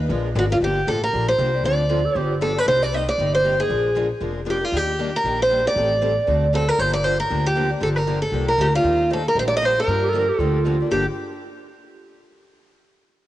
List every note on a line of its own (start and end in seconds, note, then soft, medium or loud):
0.09 0.34 A#1 medium
0.09 0.28 F3 medium
0.09 0.28 G#3 medium
0.09 0.28 D4 medium
0.09 0.28 F4 medium
0.09 0.28 A#4 medium
0.35 0.60 G#1 loud
0.35 0.45 F3 medium
0.35 0.45 G#3 medium
0.35 0.46 D4 medium
0.35 0.46 F4 loud
0.35 0.43 F#4 medium
0.35 0.46 A#4 loud
0.50 0.61 D4 soft
0.50 0.61 F4 medium
0.50 0.56 F4 medium
0.50 0.60 A#4 medium
0.60 0.81 G1 medium
0.60 0.79 D3 medium
0.60 0.79 F3 medium
0.60 0.79 A#3 medium
0.60 0.80 D4 medium
0.60 0.79 G4 medium
0.60 0.88 G4 medium
0.87 1.09 A1 medium
0.87 0.97 D3 medium
0.87 0.97 F3 medium
0.87 0.97 A#3 medium
0.87 0.97 D4 medium
0.87 0.98 G4 medium
0.87 1.02 A4 medium
1.03 1.26 A#4 medium
1.13 1.34 A#1 medium
1.13 1.31 D3 medium
1.13 1.31 F3 medium
1.13 1.31 A#3 medium
1.13 1.31 D4 medium
1.13 1.31 G4 medium
1.28 1.65 C5 medium
1.38 1.60 C2 medium
1.38 1.48 D3 medium
1.38 1.49 F3 medium
1.38 1.49 A#3 medium
1.38 1.49 D4 medium
1.38 1.49 G4 medium
1.54 1.64 A#3 soft
1.54 1.64 D4 medium
1.54 1.63 G4 soft
1.64 2.05 D2 medium
1.64 1.82 D3 medium
1.64 1.82 F3 medium
1.64 1.82 C4 medium
1.64 1.83 D4 medium
1.64 1.83 A4 medium
1.64 2.18 D5 medium
1.89 1.99 D3 medium
1.89 2.00 F3 medium
1.89 2.00 C4 medium
1.89 2.00 D4 medium
1.89 2.07 F4 medium
1.89 2.00 A4 medium
2.05 2.18 A4 medium
2.15 2.56 G1 medium
2.15 2.33 D3 medium
2.15 2.34 F3 medium
2.15 2.34 B3 medium
2.15 2.34 D4 medium
2.15 2.34 G4 medium
2.15 2.36 G4 medium
2.15 2.38 C5 medium
2.41 2.51 D3 medium
2.41 2.51 F3 medium
2.41 2.51 B3 medium
2.41 2.51 D4 medium
2.41 2.52 G4 medium
2.41 2.58 A4 medium
2.55 2.66 B3 soft
2.55 2.66 D4 soft
2.55 2.66 G4 soft
2.55 2.67 B4 medium
2.66 3.08 C2 medium
2.66 2.85 C3 medium
2.66 2.85 G3 medium
2.66 2.85 A#3 medium
2.66 2.85 D#4 medium
2.66 2.85 G4 medium
2.66 2.82 C5 medium
2.82 2.94 D5 medium
2.92 3.03 C3 medium
2.92 3.03 G3 medium
2.92 3.03 A#3 medium
2.92 3.03 D#4 medium
2.92 3.03 G4 medium
2.92 3.08 D#5 medium
3.09 3.34 D5 medium
3.18 3.59 G1 medium
3.18 3.37 C3 medium
3.18 3.37 G3 medium
3.18 3.37 A#3 medium
3.18 3.37 D#4 medium
3.18 3.37 G4 medium
3.35 3.60 C5 medium
3.45 3.54 C3 medium
3.45 3.55 G3 medium
3.45 3.55 A#3 medium
3.45 3.55 D#4 medium
3.45 3.55 G4 medium
3.58 3.70 A#3 soft
3.58 3.69 D#4 soft
3.58 3.69 G4 medium
3.58 4.07 G#4 medium
3.69 4.11 A#1 medium
3.69 3.88 D3 medium
3.69 3.88 F3 medium
3.69 3.88 G#3 medium
3.69 3.88 A#3 medium
3.69 3.88 D4 medium
3.69 3.88 F4 medium
3.69 3.88 G#4 medium
3.69 3.88 A#4 medium
3.95 4.05 D3 medium
3.95 4.06 F3 medium
3.95 4.06 G#3 medium
3.95 4.06 A#3 medium
3.95 4.06 D4 medium
3.95 4.06 F4 medium
3.95 4.06 G#4 medium
3.95 4.06 A#4 medium
4.20 4.62 F1 medium
4.20 4.39 D3 medium
4.20 4.39 F3 medium
4.20 4.39 G#3 medium
4.20 4.39 A#3 medium
4.20 4.40 D4 medium
4.20 4.40 F4 medium
4.20 4.40 G#4 medium
4.20 4.40 A#4 medium
4.45 4.57 D3 medium
4.45 4.56 F3 medium
4.45 4.57 G#3 medium
4.45 4.57 A#3 medium
4.45 4.57 D4 medium
4.45 4.57 F4 medium
4.45 4.57 G#4 medium
4.45 4.57 A#4 medium
4.50 4.65 G4 medium
4.61 4.72 D4 soft
4.61 4.72 F4 soft
4.61 4.77 F4 medium
4.61 4.72 A#4 soft
4.72 5.14 D#2 medium
4.72 4.91 D#3 medium
4.72 4.91 G3 medium
4.72 4.91 A#3 medium
4.72 4.91 D4 medium
4.72 4.91 G4 medium
4.77 5.16 G4 medium
4.98 5.09 D#3 medium
4.98 5.09 G3 medium
4.98 5.09 A#3 medium
4.98 5.09 D4 medium
4.98 5.09 G4 medium
5.16 5.41 A#4 medium
5.24 5.65 A#1 medium
5.24 5.43 D#3 medium
5.24 5.43 G3 medium
5.24 5.43 A#3 medium
5.24 5.43 D4 medium
5.24 5.43 G4 medium
5.42 5.67 C5 medium
5.51 5.61 D#3 medium
5.51 5.61 G3 medium
5.51 5.61 A#3 medium
5.51 5.61 D4 medium
5.51 5.61 G4 medium
5.66 5.77 A#3 soft
5.66 5.76 D4 medium
5.66 5.76 G4 soft
5.66 6.55 D5 loud
5.76 6.17 A1 medium
5.76 5.95 D#3 medium
5.76 5.95 G3 medium
5.76 5.95 C4 medium
5.76 5.95 G4 medium
5.76 5.95 A4 medium
6.02 6.12 D#3 medium
6.02 6.12 G3 medium
6.02 6.12 C4 medium
6.02 6.12 G4 medium
6.02 6.13 A4 medium
6.27 6.69 D2 medium
6.27 6.45 D3 medium
6.27 6.45 A3 medium
6.27 6.46 C4 medium
6.27 6.46 F#4 medium
6.27 6.46 A4 medium
6.53 6.63 D3 medium
6.53 6.64 A3 medium
6.53 6.64 C4 medium
6.53 6.64 F#4 medium
6.53 6.64 A4 medium
6.53 6.69 A4 medium
6.68 6.79 C4 soft
6.68 6.79 F#4 soft
6.68 6.78 A4 medium
6.68 6.79 A#4 medium
6.79 7.20 G1 medium
6.79 6.97 D3 medium
6.79 6.97 F3 medium
6.79 6.98 A#3 medium
6.79 6.97 D4 medium
6.79 6.98 G4 medium
6.79 6.93 C5 medium
6.94 7.04 D5 medium
7.03 7.14 D3 medium
7.03 7.14 F3 medium
7.03 7.14 A#3 medium
7.03 7.15 D4 medium
7.03 7.15 G4 medium
7.03 7.19 C5 medium
7.20 7.46 A#4 medium
7.30 7.71 D2 medium
7.30 7.49 D3 medium
7.30 7.49 F3 medium
7.30 7.49 A#3 medium
7.30 7.49 D4 medium
7.30 7.49 G4 medium
7.47 7.70 G4 medium
7.56 7.66 D3 medium
7.56 7.66 F3 medium
7.56 7.66 A#3 medium
7.56 7.67 D4 medium
7.56 7.67 G4 medium
7.69 7.80 A#3 soft
7.69 7.80 D4 soft
7.69 7.80 G4 soft
7.80 8.23 G1 medium
7.80 7.99 D3 medium
7.80 7.99 F3 medium
7.80 8.00 A#3 medium
7.80 8.00 D4 medium
7.80 8.00 G4 medium
7.80 7.88 A4 medium
7.96 8.22 A#4 medium
8.07 8.18 D3 medium
8.07 8.18 F3 medium
8.07 8.18 A#3 medium
8.07 8.18 D4 medium
8.07 8.18 G4 medium
8.22 8.48 A4 medium
8.32 8.54 C2 medium
8.32 8.51 D3 medium
8.32 8.52 F3 medium
8.32 8.52 A#3 medium
8.32 8.52 D4 medium
8.32 8.52 G4 medium
8.49 8.72 A#4 medium
8.58 8.80 D2 medium
8.58 8.69 D3 medium
8.58 8.69 F3 medium
8.58 8.69 A#3 medium
8.58 8.69 D4 medium
8.58 8.69 G4 medium
8.58 8.66 G4 medium
8.73 8.84 A#3 soft
8.73 8.84 D4 soft
8.73 9.09 F4 medium
8.73 8.84 G4 soft
8.84 9.25 D#2 medium
8.84 9.03 D#3 medium
8.84 9.03 G3 medium
8.84 9.03 A#3 medium
8.84 9.03 C4 medium
8.84 9.03 D#4 medium
8.84 9.03 G4 medium
8.84 9.03 C5 medium
9.10 9.21 D#3 medium
9.10 9.21 G3 medium
9.10 9.21 A#3 medium
9.10 9.21 C4 medium
9.10 9.21 D#4 medium
9.10 9.21 G4 medium
9.10 9.27 A4 medium
9.10 9.21 C5 medium
9.28 9.38 A#4 medium
9.35 9.77 A#1 medium
9.35 9.54 D#3 medium
9.35 9.54 G3 medium
9.35 9.54 A#3 medium
9.35 9.54 C4 medium
9.35 9.54 D#4 medium
9.35 9.54 G4 medium
9.35 9.55 C5 medium
9.39 9.42 C5 medium
9.48 9.55 D5 medium
9.56 9.65 D#5 loud
9.61 9.72 D#3 medium
9.61 9.72 G3 medium
9.61 9.72 A#3 medium
9.61 9.72 C4 medium
9.61 9.72 D#4 medium
9.61 9.72 G4 medium
9.61 9.72 C5 medium
9.61 9.79 C5 medium
9.77 9.88 C4 soft
9.77 9.88 G4 soft
9.77 10.36 A#4 medium
9.77 9.88 C5 medium
9.87 10.29 G2 medium
9.87 10.06 D3 medium
9.87 10.06 F3 medium
9.87 10.07 A#3 medium
9.87 10.07 D4 medium
9.87 10.07 G4 medium
10.03 10.11 G4 medium
10.09 10.20 A4 medium
10.14 10.24 D3 medium
10.14 10.25 F3 medium
10.14 10.24 A#3 medium
10.14 10.25 D4 medium
10.14 10.25 G4 medium
10.19 10.30 A#4 medium
10.29 10.40 G4 medium
10.36 10.80 D2 medium
10.36 10.90 F4 medium
10.36 10.62 A4 medium
10.40 10.58 D3 medium
10.40 10.58 F3 medium
10.40 10.58 A#3 medium
10.40 10.58 D4 medium
10.40 10.58 G4 medium
10.66 10.76 D3 medium
10.66 10.76 F3 medium
10.66 10.76 A#3 medium
10.66 10.76 D4 medium
10.66 10.76 G4 medium
10.80 10.91 A#3 soft
10.80 10.91 D4 soft
10.80 10.91 G4 soft
10.91 11.05 G1 medium
10.91 11.03 G2 medium
10.91 11.03 D3 medium
10.91 11.03 F3 medium
10.91 11.03 A#3 medium
10.91 11.05 D4 medium
10.91 11.04 D4 medium
10.91 11.05 G4 medium
10.91 11.04 G4 medium